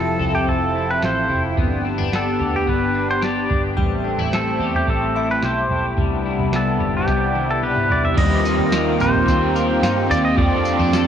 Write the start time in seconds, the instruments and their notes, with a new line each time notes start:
Already playing: picked electric bass F1, analog synth pad F3 C4 E4 G4 A4, clean electric guitar F3 C4 E4, pedal steel guitar A4
0.20 picked electric bass C2, clean electric guitar A4, floor tom
0.33 pedal steel guitar G4, floor tom
0.47 picked electric bass F1, clean electric guitar C4, pedal steel guitar A4, kick
0.75 clean electric guitar E4
0.90 pedal steel guitar B4
1.02 picked electric bass A1, clean electric guitar A4, pedal steel guitar C5, snare
1.29 picked electric bass F1, clean electric guitar E4, floor tom
1.57 picked electric bass G1, analog synth pad B3 D4, clean electric guitar B3, kick, floor tom
1.85 clean electric guitar C4
1.98 picked electric bass G1, clean electric guitar D4, floor tom
2.12 clean electric guitar B3, pedal steel guitar A4, snare
2.39 picked electric bass D2, clean electric guitar G4, floor tom
2.54 pedal steel guitar G4, floor tom
2.67 picked electric bass G1, clean electric guitar B3, pedal steel guitar B4, kick
2.94 clean electric guitar D4
3.11 pedal steel guitar C5
3.21 clean electric guitar G4, pedal steel guitar D5, snare
3.49 picked electric bass G1, clean electric guitar D4, kick, floor tom
3.77 picked electric bass A1, clean electric guitar G3, analog synth pad A3 C4, synth bell G5, kick, floor tom
4.04 clean electric guitar D4
4.18 picked electric bass A1, clean electric guitar E4, floor tom
4.33 clean electric guitar C4, pedal steel guitar A4, snare
4.59 picked electric bass E2, clean electric guitar G4, floor tom
4.74 pedal steel guitar G4, floor tom
4.88 picked electric bass A1, clean electric guitar C4, pedal steel guitar A4, kick
5.15 clean electric guitar E4, synth bell E5
5.31 pedal steel guitar B4
5.42 picked electric bass B1, clean electric guitar G4, pedal steel guitar C5, snare
5.69 picked electric bass B1, clean electric guitar E4, floor tom
5.97 picked electric bass C2, analog synth pad C3 G3 B3 D4 E4, clean electric guitar G3, kick, floor tom
6.26 clean electric guitar E4
6.39 picked electric bass C2, floor tom
6.53 clean electric guitar B3, pedal steel guitar A4, snare
6.80 picked electric bass G1, clean electric guitar G4, floor tom
6.94 pedal steel guitar G4, floor tom
7.08 picked electric bass C2, clean electric guitar B3, kick, snare
7.35 clean electric guitar E4, high tom
7.51 pedal steel guitar A4
7.63 clean electric guitar G4, pedal steel guitar B4, mid tom
7.76 mid tom
7.90 picked electric bass C2, clean electric guitar E4, pedal steel guitar D5, floor tom
8.04 pedal steel guitar E5, floor tom
8.15 picked electric bass D#2, overdriven electric guitar D#3 A#3, analog synth pad D#3 A#3 C4 F4 G4, clean electric guitar G3, pedal steel guitar D#5, kick, floor tom, crash
8.20 overdriven electric guitar C4 G4 C5
8.45 clean electric guitar D#4, synth bell D#5, tambourine
8.59 picked electric bass D#2, floor tom
8.72 clean electric guitar A#4, snare, tambourine
9.00 picked electric bass A#1, clean electric guitar D#4, pedal steel guitar C5, floor tom, tambourine
9.14 floor tom
9.26 picked electric bass D#2, overdriven electric guitar A#3 C4 G4, clean electric guitar C4, kick, tambourine
9.31 overdriven electric guitar C5
9.55 clean electric guitar A#4, tambourine
9.82 picked electric bass G2, clean electric guitar D#4, synth bell F5, snare, tambourine
10.07 picked electric bass D#2, clean electric guitar C4, overdriven electric guitar G4 C5, pedal steel guitar D5, floor tom, tambourine
10.13 overdriven electric guitar C4
10.25 pedal steel guitar D#5
10.35 picked electric bass F2, overdriven electric guitar F3 A3, clean electric guitar F3, analog synth pad F3 D4 A4, pedal steel guitar D5, kick, floor tom
10.39 overdriven electric guitar D4 A4 C5
10.65 clean electric guitar C4, tambourine
10.79 picked electric bass F2, clean electric guitar D4, floor tom
10.93 clean electric guitar A4, snare, tambourine